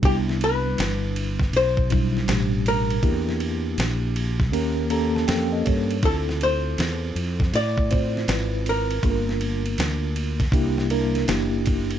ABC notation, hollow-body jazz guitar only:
X:1
M:4/4
L:1/8
Q:"Swing 16ths" 1/4=80
K:Ddor
V:1 name="Hollow-body jazz guitar"
G B3 c3 _B- | _B4- B z3 | A c3 d3 _B- | _B4- B z3 |]